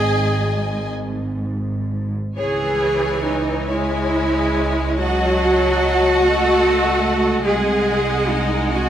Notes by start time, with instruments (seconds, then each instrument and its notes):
Already playing: double bass section G#1, cello section G#2, viola section G#4, violin section D#5 G#5
2.37 double bass section C#2, viola section E3, cello section G#4, violin section C#5 G#5
3.25 cello section D#4
3.67 viola section G#3, cello section E4, violin section C#5 G#5
4.98 viola section F#3, cello section F#4, violin section D#5 F#5 A5
6.23 viola section A3
7.43 double bass section C2, viola section G#3, cello section G#4, violin section D#5 F#5 G#5
8.29 cello section D#4
8.71 cello section F#4, violin section D#5 F#5 G#5